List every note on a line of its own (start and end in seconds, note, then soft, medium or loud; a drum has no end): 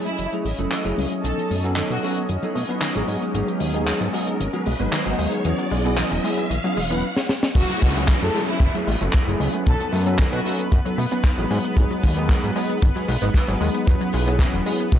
0.00 0.14 F#3 medium
0.00 0.14 A3 medium
0.00 0.14 C#4 medium
0.00 7.03 C#4 medium
0.00 0.15 E4 medium
0.00 0.15 G#4 medium
0.00 7.03 D#5 medium
0.00 riser medium
0.06 0.17 A3 medium
0.06 0.26 E4 medium
0.06 closed hi-hat soft
0.06 shaker medium
0.18 0.27 F#1 medium
0.18 0.27 E3 medium
0.18 closed hi-hat loud
0.18 shaker soft
0.32 0.46 F#3 medium
0.32 0.40 F#3 medium
0.32 0.46 A3 medium
0.32 0.46 C#4 medium
0.32 0.46 E4 medium
0.32 0.46 G#4 medium
0.32 closed hi-hat medium
0.45 0.53 A1 loud
0.45 0.50 G#3 loud
0.45 open hi-hat loud
0.45 shaker medium
0.58 0.67 F#1 medium
0.58 0.82 F#3 medium
0.58 0.82 A3 medium
0.58 0.66 A3 loud
0.58 0.82 C#4 medium
0.58 0.82 E4 medium
0.58 0.82 A4 medium
0.58 closed hi-hat medium
0.58 shaker medium
0.72 0.83 E3 medium
0.72 clap loud
0.72 closed hi-hat medium
0.72 shaker soft
0.84 0.93 F#1 medium
0.84 1.21 F#3 medium
0.84 0.92 F#3 medium
0.84 1.21 A3 medium
0.84 1.21 C#4 medium
0.84 1.21 E4 medium
0.84 1.21 G#4 medium
0.84 closed hi-hat medium
0.98 1.06 C#2 medium
0.98 1.06 G#3 loud
0.98 open hi-hat loud
0.98 shaker medium
1.12 1.22 A3 medium
1.12 closed hi-hat soft
1.12 shaker medium
1.24 1.32 B1 medium
1.24 1.32 D#3 medium
1.24 1.61 F#3 medium
1.24 1.61 B3 medium
1.24 1.61 C#4 medium
1.24 1.61 D#4 medium
1.24 1.64 A4 medium
1.24 1.61 A4 medium
1.24 closed hi-hat medium
1.24 shaker medium
1.38 1.45 F#3 loud
1.38 closed hi-hat medium
1.51 1.82 F#2 medium
1.51 1.55 A3 loud
1.51 open hi-hat loud
1.51 shaker medium
1.64 2.00 F#3 medium
1.64 2.00 B3 medium
1.64 1.71 B3 medium
1.64 2.00 C#4 medium
1.64 2.00 D#4 medium
1.64 2.00 A4 loud
1.64 closed hi-hat medium
1.64 shaker medium
1.76 1.89 D#3 loud
1.76 clap loud
1.76 closed hi-hat medium
1.76 shaker soft
1.90 1.98 B2 medium
1.90 1.98 F#3 medium
1.90 1.99 F#4 medium
1.90 closed hi-hat medium
2.03 2.25 F#3 medium
2.03 2.11 A3 loud
2.03 2.25 B3 medium
2.03 2.25 C#4 medium
2.03 2.25 D#4 medium
2.03 2.12 F#4 medium
2.03 2.26 A4 medium
2.03 open hi-hat loud
2.03 shaker medium
2.16 2.27 B3 medium
2.16 closed hi-hat medium
2.16 shaker medium
2.29 2.38 F#2 medium
2.29 2.37 D#3 medium
2.29 closed hi-hat medium
2.29 shaker soft
2.42 2.56 F#3 medium
2.42 2.50 F#3 medium
2.42 2.56 B3 medium
2.42 2.56 C#4 medium
2.42 2.56 D#4 medium
2.42 2.57 A4 medium
2.42 closed hi-hat medium
2.55 2.64 B2 medium
2.55 2.60 A3 loud
2.55 open hi-hat loud
2.55 shaker medium
2.69 2.92 F#3 medium
2.69 2.76 B3 loud
2.69 2.92 B3 medium
2.69 2.93 C#4 medium
2.69 2.93 D#4 medium
2.69 2.93 B4 medium
2.69 closed hi-hat medium
2.69 shaker medium
2.81 2.93 D#3 loud
2.81 clap loud
2.81 closed hi-hat medium
2.81 shaker soft
2.95 3.03 A1 medium
2.95 3.03 F#3 medium
2.95 3.31 F#3 medium
2.95 3.32 G#3 medium
2.95 3.32 B3 medium
2.95 3.32 D#4 medium
2.95 3.32 G#4 loud
2.95 closed hi-hat soft
3.08 3.17 G#2 medium
3.08 3.16 G#3 loud
3.08 open hi-hat loud
3.08 shaker medium
3.21 3.33 B3 medium
3.21 closed hi-hat medium
3.21 shaker medium
3.34 3.43 G#1 loud
3.34 3.42 D#3 medium
3.34 3.71 F#3 medium
3.34 3.71 G#3 medium
3.34 3.71 B3 medium
3.34 3.71 D#4 medium
3.34 3.72 G#4 medium
3.34 closed hi-hat loud
3.34 shaker soft
3.47 3.55 F#3 loud
3.47 closed hi-hat medium
3.60 3.92 D#2 medium
3.60 3.65 G#3 loud
3.60 open hi-hat loud
3.60 shaker medium
3.74 4.10 F#3 medium
3.74 4.10 G#3 medium
3.74 3.82 B3 medium
3.74 4.11 B3 medium
3.74 4.11 D#4 medium
3.74 4.11 G#4 loud
3.74 closed hi-hat medium
3.74 shaker medium
3.87 3.99 D#3 loud
3.87 clap loud
3.87 closed hi-hat loud
3.87 shaker medium
4.01 4.09 G#2 medium
4.01 4.08 F#3 medium
4.01 closed hi-hat medium
4.13 4.35 F#3 medium
4.13 4.21 G#3 loud
4.13 4.35 G#3 medium
4.13 4.36 B3 medium
4.13 4.36 D#4 medium
4.13 4.36 G#4 medium
4.13 open hi-hat loud
4.13 shaker medium
4.27 4.38 B3 medium
4.27 closed hi-hat medium
4.27 shaker medium
4.40 4.48 G#1 medium
4.40 4.48 D#3 medium
4.40 closed hi-hat medium
4.40 shaker soft
4.53 4.67 F#3 medium
4.53 4.61 F#3 loud
4.53 4.67 G#3 medium
4.53 4.67 B3 medium
4.53 4.67 D#4 medium
4.53 4.67 G#4 medium
4.53 closed hi-hat medium
4.66 4.75 B1 medium
4.66 4.71 G#3 loud
4.66 open hi-hat loud
4.66 shaker medium
4.79 4.88 G#1 medium
4.79 5.03 F#3 medium
4.79 5.03 G#3 medium
4.79 4.87 B3 loud
4.79 5.03 B3 medium
4.79 5.03 D#4 medium
4.79 5.03 B4 medium
4.79 closed hi-hat medium
4.79 shaker medium
4.92 5.04 D#3 loud
4.92 clap loud
4.92 closed hi-hat medium
4.92 shaker soft
5.06 5.14 G#1 medium
5.06 5.42 F#3 loud
5.06 5.13 F#3 medium
5.06 5.42 G#3 medium
5.06 5.42 B3 medium
5.06 5.42 D#4 medium
5.06 5.42 G#4 loud
5.06 closed hi-hat medium
5.19 5.27 D#2 medium
5.19 5.27 G#3 loud
5.19 open hi-hat loud
5.19 shaker medium
5.32 5.43 B3 medium
5.32 closed hi-hat medium
5.32 shaker medium
5.45 5.53 E2 loud
5.45 5.53 E3 medium
5.45 5.82 F#3 medium
5.45 5.82 B3 medium
5.45 5.82 C#4 medium
5.45 5.82 E4 medium
5.45 5.82 G#4 medium
5.45 closed hi-hat medium
5.45 shaker medium
5.59 5.66 F#3 loud
5.59 closed hi-hat medium
5.71 6.03 B1 loud
5.71 5.76 G#3 loud
5.71 open hi-hat loud
5.71 shaker medium
5.85 6.21 F#3 medium
5.85 5.92 B3 loud
5.85 6.21 B3 medium
5.85 6.21 C#4 medium
5.85 6.21 E4 medium
5.85 6.21 G#4 loud
5.85 closed hi-hat medium
5.85 shaker medium
5.98 6.09 E3 loud
5.98 clap loud
5.98 closed hi-hat medium
5.98 shaker medium
6.11 6.19 E1 medium
6.11 6.19 F#3 medium
6.11 closed hi-hat medium
6.24 6.46 F#3 medium
6.24 6.32 G#3 loud
6.24 6.46 B3 medium
6.24 6.46 C#4 medium
6.24 6.47 E4 medium
6.24 6.47 G#4 loud
6.24 open hi-hat loud
6.24 shaker medium
6.38 6.49 B3 medium
6.38 closed hi-hat medium
6.38 shaker medium
6.50 6.59 B1 medium
6.50 6.58 E3 medium
6.50 closed hi-hat medium
6.50 shaker medium
6.64 6.77 F#3 medium
6.64 6.71 F#3 loud
6.64 6.77 B3 medium
6.64 6.78 C#4 medium
6.64 6.78 E4 medium
6.64 6.78 G#4 medium
6.64 closed hi-hat medium
6.77 7.03 E1 medium
6.77 6.82 G#3 loud
6.77 open hi-hat loud
6.77 shaker medium
6.90 7.03 F#3 medium
6.90 7.03 B3 medium
6.90 6.98 B3 loud
6.90 7.03 C#4 medium
6.90 7.03 E4 medium
6.90 7.03 B4 loud
6.90 closed hi-hat medium
6.90 shaker medium
7.17 snare medium
7.29 snare medium
7.43 snare medium
7.55 7.64 F#1 loud
7.55 7.64 E3 medium
7.55 7.92 F#3 medium
7.55 7.93 A3 medium
7.55 14.99 B3 medium
7.55 7.93 C#4 medium
7.55 7.93 E4 medium
7.55 7.96 F#4 loud
7.55 7.93 G#4 medium
7.55 14.99 B4 medium
7.55 kick loud
7.55 closed hi-hat loud
7.55 crash loud
7.55 downlifter medium
7.55 shaker soft
7.69 7.77 F#3 loud
7.69 closed hi-hat medium
7.82 8.14 C#2 loud
7.82 7.87 G#3 loud
7.82 kick medium
7.82 open hi-hat loud
7.82 shaker medium
7.95 8.32 F#3 medium
7.95 8.32 A3 medium
7.95 8.03 A3 loud
7.95 8.32 C#4 medium
7.95 8.32 E4 medium
7.95 8.32 G#4 loud
7.95 closed hi-hat medium
7.95 shaker medium
8.08 8.20 E3 loud
8.08 kick loud
8.08 clap loud
8.08 closed hi-hat medium
8.08 shaker medium
8.22 8.30 F#2 medium
8.22 8.29 F#3 medium
8.22 8.42 A4 medium
8.22 closed hi-hat medium
8.34 8.56 F#3 medium
8.34 8.42 G#3 loud
8.34 8.57 A3 medium
8.34 8.57 C#4 medium
8.34 8.57 E4 medium
8.34 8.57 G#4 medium
8.34 open hi-hat loud
8.34 shaker medium
8.48 8.59 A3 medium
8.48 8.68 E4 medium
8.48 closed hi-hat medium
8.48 shaker medium
8.60 8.69 F#1 medium
8.60 8.69 E3 medium
8.60 kick loud
8.60 closed hi-hat medium
8.60 shaker medium
8.74 8.88 F#3 medium
8.74 8.82 F#3 loud
8.74 8.88 A3 medium
8.74 8.88 C#4 medium
8.74 8.88 E4 medium
8.74 8.88 G#4 medium
8.74 closed hi-hat medium
8.87 8.96 A1 medium
8.87 8.92 G#3 loud
8.87 open hi-hat loud
8.87 shaker medium
9.00 9.09 F#1 loud
9.00 9.24 F#3 medium
9.00 9.24 A3 medium
9.00 9.08 A3 loud
9.00 9.24 C#4 medium
9.00 9.24 E4 medium
9.00 9.24 A4 medium
9.00 closed hi-hat medium
9.00 shaker medium
9.13 9.26 E3 loud
9.13 kick loud
9.13 clap loud
9.13 closed hi-hat medium
9.13 shaker soft
9.27 9.35 F#1 medium
9.27 9.63 F#3 loud
9.27 9.35 F#3 medium
9.27 9.63 A3 medium
9.27 9.63 C#4 medium
9.27 9.63 E4 medium
9.27 9.63 G#4 loud
9.27 closed hi-hat medium
9.40 9.48 C#2 medium
9.40 9.48 G#3 loud
9.40 open hi-hat loud
9.40 shaker medium
9.54 9.65 A3 medium
9.54 closed hi-hat medium
9.54 shaker medium
9.66 9.75 B1 loud
9.66 9.74 D#3 medium
9.66 10.03 F#3 medium
9.66 10.03 B3 medium
9.66 10.03 C#4 medium
9.66 10.03 D#4 medium
9.66 10.06 A4 loud
9.66 10.03 A4 medium
9.66 kick loud
9.66 closed hi-hat medium
9.66 shaker soft
9.80 9.87 F#3 loud
9.80 closed hi-hat medium
9.92 10.24 F#2 medium
9.92 9.97 A3 loud
9.92 open hi-hat loud
9.92 shaker medium
10.06 10.42 F#3 loud
10.06 10.42 B3 medium
10.06 10.13 B3 loud
10.06 10.42 C#4 medium
10.06 10.42 D#4 medium
10.06 10.42 A4 loud
10.06 closed hi-hat medium
10.06 shaker medium
10.19 10.31 D#3 loud
10.19 kick loud
10.19 clap loud
10.19 closed hi-hat loud
10.19 shaker soft
10.32 10.40 B2 medium
10.32 10.40 F#3 medium
10.32 10.41 F#4 medium
10.32 closed hi-hat medium
10.45 10.67 F#3 medium
10.45 10.53 A3 loud
10.45 10.67 B3 medium
10.45 10.67 C#4 medium
10.45 10.67 D#4 medium
10.45 10.54 F#4 medium
10.45 10.67 A4 medium
10.45 open hi-hat loud
10.45 shaker medium
10.59 10.70 B3 medium
10.59 closed hi-hat medium
10.59 shaker medium
10.72 10.80 F#2 medium
10.72 10.79 D#3 medium
10.72 kick loud
10.72 closed hi-hat medium
10.72 shaker medium
10.85 10.98 F#3 medium
10.85 10.93 F#3 loud
10.85 10.99 B3 medium
10.85 10.99 C#4 medium
10.85 10.99 D#4 medium
10.85 10.99 A4 medium
10.85 closed hi-hat medium
10.98 11.06 B2 medium
10.98 11.03 A3 loud
10.98 open hi-hat loud
10.98 shaker medium
11.11 11.34 F#3 medium
11.11 11.35 B3 medium
11.11 11.19 B3 loud
11.11 11.35 C#4 medium
11.11 11.35 D#4 medium
11.11 11.35 B4 medium
11.11 closed hi-hat medium
11.11 shaker medium
11.24 11.36 D#3 loud
11.24 kick loud
11.24 clap loud
11.24 closed hi-hat loud
11.24 shaker soft
11.38 11.46 A1 medium
11.38 11.74 F#3 loud
11.38 11.45 F#3 medium
11.38 11.74 G#3 medium
11.38 11.74 B3 medium
11.38 11.74 D#4 medium
11.38 11.74 G#4 loud
11.38 closed hi-hat medium
11.51 11.59 G#2 medium
11.51 11.58 G#3 loud
11.51 open hi-hat loud
11.51 shaker medium
11.65 11.75 B3 medium
11.65 closed hi-hat soft
11.65 shaker medium
11.76 11.85 G#1 loud
11.76 11.85 D#3 medium
11.76 12.13 F#3 medium
11.76 12.13 G#3 medium
11.76 12.14 B3 medium
11.76 12.14 D#4 medium
11.76 12.14 G#4 medium
11.76 kick loud
11.76 closed hi-hat medium
11.76 shaker medium
11.91 11.98 F#3 loud
11.91 closed hi-hat medium
12.03 12.35 D#2 loud
12.03 12.08 G#3 loud
12.03 kick medium
12.03 open hi-hat loud
12.03 shaker medium
12.16 12.53 F#3 loud
12.16 12.53 G#3 medium
12.16 12.24 B3 loud
12.16 12.53 B3 medium
12.16 12.53 D#4 medium
12.16 12.53 G#4 loud
12.16 closed hi-hat medium
12.16 shaker medium
12.29 12.41 D#3 loud
12.29 kick loud
12.29 clap loud
12.29 closed hi-hat loud
12.29 shaker medium
12.43 12.51 G#2 medium
12.43 12.50 F#3 medium
12.43 closed hi-hat medium
12.55 12.78 F#3 medium
12.55 12.78 G#3 medium
12.55 12.64 G#3 loud
12.55 12.78 B3 medium
12.55 12.78 D#4 medium
12.55 12.78 G#4 loud
12.55 open hi-hat loud
12.55 shaker medium
12.70 12.80 B3 medium
12.70 closed hi-hat medium
12.70 shaker medium
12.82 12.91 G#1 medium
12.82 12.90 D#3 medium
12.82 kick loud
12.82 closed hi-hat medium
12.82 shaker soft
12.95 13.09 F#3 medium
12.95 13.03 F#3 loud
12.95 13.09 G#3 medium
12.95 13.09 B3 medium
12.95 13.09 D#4 medium
12.95 13.09 G#4 medium
12.95 closed hi-hat medium
13.08 13.17 B1 loud
13.08 13.13 G#3 loud
13.08 open hi-hat loud
13.08 shaker medium
13.22 13.30 G#1 loud
13.22 13.45 F#3 medium
13.22 13.45 G#3 medium
13.22 13.29 B3 loud
13.22 13.45 B3 medium
13.22 13.45 D#4 medium
13.22 13.45 B4 loud
13.22 closed hi-hat medium
13.22 shaker medium
13.34 13.46 D#3 loud
13.34 kick loud
13.34 clap loud
13.34 closed hi-hat loud
13.34 shaker soft
13.48 13.56 G#1 medium
13.48 13.84 F#3 loud
13.48 13.56 F#3 medium
13.48 13.84 G#3 medium
13.48 13.84 B3 medium
13.48 13.85 D#4 medium
13.48 13.85 G#4 loud
13.48 closed hi-hat medium
13.61 13.69 D#2 medium
13.61 13.69 G#3 loud
13.61 open hi-hat medium
13.61 shaker medium
13.75 13.85 B3 medium
13.75 closed hi-hat medium
13.75 shaker medium
13.86 13.96 E2 loud
13.86 13.95 E3 medium
13.86 14.24 F#3 medium
13.86 14.24 B3 medium
13.86 14.24 C#4 medium
13.86 14.24 E4 medium
13.86 14.24 G#4 medium
13.86 kick loud
13.86 closed hi-hat medium
13.86 shaker medium
14.01 14.08 F#3 loud
14.01 closed hi-hat medium
14.13 14.45 B1 medium
14.13 14.18 G#3 loud
14.13 open hi-hat loud
14.13 shaker medium
14.27 14.63 F#3 loud
14.27 14.63 B3 medium
14.27 14.34 B3 medium
14.27 14.63 C#4 medium
14.27 14.63 E4 medium
14.27 14.64 G#4 loud
14.27 closed hi-hat medium
14.27 shaker medium
14.39 14.52 E3 loud
14.39 kick loud
14.39 clap loud
14.39 closed hi-hat medium
14.39 shaker soft
14.54 14.61 E1 medium
14.54 14.61 F#3 medium
14.54 closed hi-hat medium
14.66 14.88 F#3 medium
14.66 14.74 G#3 loud
14.66 14.88 B3 medium
14.66 14.88 C#4 medium
14.66 14.88 E4 medium
14.66 14.89 G#4 medium
14.66 open hi-hat loud
14.66 shaker medium
14.80 14.91 B3 medium
14.80 closed hi-hat medium
14.80 shaker medium
14.92 14.99 B1 medium
14.92 14.99 E3 medium
14.92 kick loud
14.92 closed hi-hat medium
14.92 shaker medium